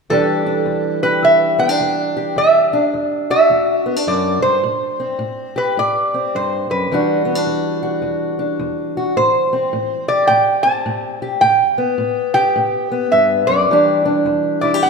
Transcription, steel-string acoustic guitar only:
0.10 E2 E3 G3 D4 G4
0.46 D4
0.66 E2
1.04 G4
1.23 E2
1.58 B3
1.69 D4
1.80 E2
2.17 G4
2.36 E2
2.73 D4
2.94 E2
3.30 F#4
3.50 E2
3.86 B3
3.96 D4
4.07 F#2
4.42 G2
4.63 A2
5.00 C4
5.19 A2
5.56 G4
5.77 A2
6.14 C4
6.35 G2
6.70 F#2
6.91 E2 E3 G3 D4 F#4
7.25 B3
7.35 D4
7.46 E2
7.83 F#4
8.02 E2
8.39 D4
8.59 E2
8.97 F#4
9.17 A2
9.53 C4
9.73 A2
10.08 G4
10.29 A2
10.65 C4
10.86 A2
11.22 G4
11.42 A2
11.78 B3
11.98 A2
12.35 G4
12.56 A2
12.92 B3
13.12 G2
13.49 F#2
13.70 E2 E3 G3 D4 G4
14.06 D4
14.26 E2
14.63 E4
14.74 G4
14.85 E2

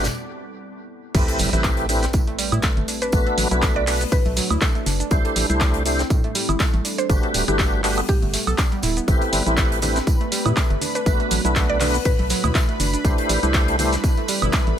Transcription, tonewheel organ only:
1.15 A3 C4 E4 G4 B4
1.53 A3 C4 E4 G4 B4
1.89 A3 C4 E4 G4 B4
3.13 A3 B3 D4 F#4 B4
3.51 A3 B3 D4 F#4 B4
3.87 A3 B3 D4 F#4 B4
5.11 A3 D4 E4 G4 C5
5.50 A3 D4 E4 G4 C5
5.86 A3 D4 E4 G4 C5
7.10 A3 D4 F#4 G4 B4
7.48 A3 D4 F#4 G4 B4
7.84 A3 D4 F#4 G4 B4
9.08 A3 C4 E4 G4 B4
9.46 A3 C4 E4 G4 B4
9.82 A3 C4 E4 G4 B4
11.06 A3 B3 D4 F#4 B4
11.45 A3 B3 D4 F#4 B4
11.81 A3 B3 D4 F#4 B4
13.05 A3 D4 E4 G4 C5
13.43 A3 D4 E4 G4 C5
13.79 A3 D4 E4 G4 C5

